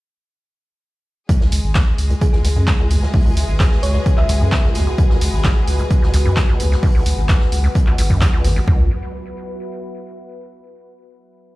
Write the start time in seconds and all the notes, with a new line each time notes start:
1.29 C#2 G#3 F#4 G#4, kick, closed hi-hat
1.41 C#2, snare
1.52 C#2, closed hi-hat, open hi-hat
1.64 G#1
1.75 D#2 B4, kick, snare, clap, closed hi-hat
1.96 C#2 E5, closed hi-hat, open hi-hat
2.10 C#2, closed hi-hat
2.21 G#4, kick, closed hi-hat
2.32 C#2 G#4, snare
2.44 C#2, snare, closed hi-hat, open hi-hat
2.56 F#2
2.67 D#2, kick, snare, clap, closed hi-hat
2.79 C#2
2.90 C#2 E2, closed hi-hat, open hi-hat
3.02 C#2, snare
3.14 C#2, kick, open hi-hat
3.25 C#2
3.37 C#2, closed hi-hat, open hi-hat
3.48 G#1
3.60 D#2, kick, snare, clap, closed hi-hat
3.72 snare
3.83 C#2 C#5, closed hi-hat, open hi-hat
3.94 C#2 C#5
4.06 kick, closed hi-hat
4.17 C#2 E5, clap
4.29 C#2, closed hi-hat, open hi-hat
4.41 F#2
4.52 D#2, kick, snare, clap, closed hi-hat
4.64 C#2
4.75 C#2 E2, snare, closed hi-hat, open hi-hat
4.87 C#2
4.98 C#2, kick, closed hi-hat
5.10 C#2, snare
5.21 C#2, closed hi-hat, open hi-hat
5.33 G#1
5.44 D#2 F#5, kick, snare, clap, closed hi-hat
5.68 C#2, closed hi-hat, open hi-hat
5.79 C#2, closed hi-hat
5.90 kick, closed hi-hat
6.02 C#2, snare
6.14 C#2, snare, closed hi-hat, open hi-hat
6.25 F#2
6.36 D#2, kick, snare, clap, closed hi-hat
6.49 C#2
6.60 C#2 E2, closed hi-hat, open hi-hat
6.72 C#2, snare
6.83 C#2, kick, open hi-hat
6.95 C#2
7.06 C#2, closed hi-hat, open hi-hat
7.18 G#1
7.29 D#2, kick, snare, clap, closed hi-hat
7.41 snare
7.52 C#2, closed hi-hat, open hi-hat
7.64 C#2
7.75 kick, closed hi-hat
7.87 C#2, clap
7.98 G#1 C#2, closed hi-hat, open hi-hat
8.10 F#2, kick
8.21 D#2, kick, snare, clap, closed hi-hat
8.33 C#2
8.44 G#1 E2, snare, closed hi-hat, open hi-hat
8.56 C#2
8.68 C#2 F#4, kick, floor tom
8.75 B4
8.82 E5